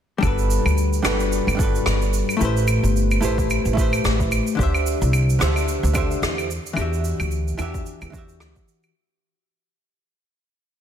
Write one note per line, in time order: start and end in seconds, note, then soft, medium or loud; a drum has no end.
0.18 1.00 G3 medium
0.18 1.01 D4 medium
0.22 0.57 G1 medium
0.22 1.02 F#4 medium
0.22 1.03 A4 medium
0.22 kick loud
0.22 cabasa medium
0.22 claves medium
0.27 1.04 B4 loud
0.38 cabasa soft
0.51 cabasa medium
0.65 0.98 D2 medium
0.65 cabasa soft
0.65 claves medium
0.78 cabasa medium
0.93 cabasa soft
1.02 1.39 G1 medium
1.02 1.54 G3 medium
1.02 1.56 D4 medium
1.02 1.56 F#4 medium
1.02 1.57 A4 medium
1.02 cross-stick medium
1.02 cabasa medium
1.02 claves medium
1.06 1.57 B4 medium
1.20 cabasa soft
1.32 cabasa medium
1.47 1.80 G1 medium
1.47 cabasa soft
1.47 claves medium
1.55 2.36 G3 medium
1.55 2.37 D4 medium
1.55 2.38 F#4 medium
1.59 2.39 A4 medium
1.59 2.40 B4 loud
1.59 kick loud
1.59 cabasa medium
1.75 cabasa soft
1.86 2.21 G1 medium
1.86 cross-stick medium
1.86 cabasa medium
1.86 claves medium
2.02 cabasa soft
2.13 cabasa medium
2.29 cabasa soft
2.29 claves medium
2.37 3.18 A3 medium
2.37 3.19 E4 medium
2.41 2.75 A1 medium
2.41 3.20 G4 medium
2.41 3.21 B4 medium
2.41 cabasa medium
2.45 3.22 C5 loud
2.57 cabasa soft
2.68 cabasa medium
2.68 claves medium
2.83 3.16 G1 medium
2.83 cabasa medium
2.96 cabasa medium
3.11 cabasa soft
3.11 claves medium
3.21 3.57 A1 medium
3.21 3.72 A3 medium
3.21 3.74 E4 medium
3.21 3.74 G4 medium
3.21 3.75 B4 medium
3.21 cabasa medium
3.25 3.75 C5 loud
3.38 kick medium
3.38 cabasa soft
3.50 cabasa medium
3.50 claves medium
3.65 3.98 A1 medium
3.65 cabasa soft
3.73 4.54 A3 medium
3.73 4.55 E4 medium
3.73 4.56 G4 medium
3.73 kick medium
3.78 4.57 B4 medium
3.78 4.58 C5 loud
3.78 cabasa medium
3.93 cabasa soft
3.93 claves medium
4.04 4.39 A1 medium
4.04 cross-stick medium
4.04 cabasa medium
4.20 kick medium
4.20 cabasa soft
4.32 cabasa medium
4.32 claves medium
4.47 cabasa soft
4.55 4.93 D2 medium
4.55 5.36 D3 medium
4.55 5.37 D4 medium
4.55 5.38 G4 medium
4.55 kick loud
4.60 5.39 C5 medium
4.60 5.40 E5 loud
4.60 cabasa medium
4.75 cabasa soft
4.75 claves medium
4.86 cabasa medium
5.02 5.34 C2 loud
5.02 cabasa soft
5.13 cabasa medium
5.13 claves medium
5.30 cabasa soft
5.39 5.75 D2 medium
5.39 5.92 D3 medium
5.39 5.92 D4 medium
5.39 5.93 G4 medium
5.39 5.93 C5 medium
5.39 cross-stick medium
5.39 cabasa medium
5.43 5.94 E5 loud
5.56 cabasa soft
5.56 claves medium
5.68 cabasa medium
5.83 6.16 D2 loud
5.83 cabasa soft
5.93 6.48 D3 medium
5.93 6.48 D4 medium
5.93 6.48 G4 medium
5.93 6.49 C5 medium
5.93 6.49 E5 loud
5.93 kick medium
5.93 cabasa medium
5.93 claves medium
6.11 cabasa soft
6.22 6.57 E2 medium
6.22 cross-stick medium
6.22 cabasa medium
6.38 cabasa soft
6.38 claves medium
6.51 cabasa medium
6.66 cabasa medium
6.73 7.11 E2 medium
6.73 7.54 E3 loud
6.73 7.55 D4 medium
6.73 7.56 F#4 medium
6.73 cabasa medium
6.73 claves medium
6.79 7.57 G4 medium
6.79 7.58 E5 loud
6.93 cabasa soft
7.05 cabasa loud
7.20 7.53 D2 medium
7.20 cabasa medium
7.20 claves medium
7.31 cabasa medium
7.48 cabasa soft
7.57 7.93 E2 medium
7.57 8.09 E3 medium
7.57 8.10 D4 medium
7.57 8.11 F#4 medium
7.57 8.11 G4 medium
7.57 8.12 E5 loud
7.57 cabasa medium
7.57 claves medium
7.74 kick medium
7.74 cabasa soft
7.86 cabasa medium
8.02 8.40 E2 medium
8.02 cabasa soft
8.02 claves medium
8.10 8.91 E3 medium
8.10 8.92 D4 medium
8.10 kick loud
8.10 cabasa medium
8.14 8.93 F#4 medium
8.14 8.94 G4 medium
8.18 8.95 E5 loud
8.29 cabasa soft
8.40 8.51 D2 medium
8.40 cross-stick medium
8.40 cabasa medium
8.40 claves medium
8.56 kick medium
8.56 cabasa soft
8.68 cabasa medium
8.83 cabasa soft
8.83 claves medium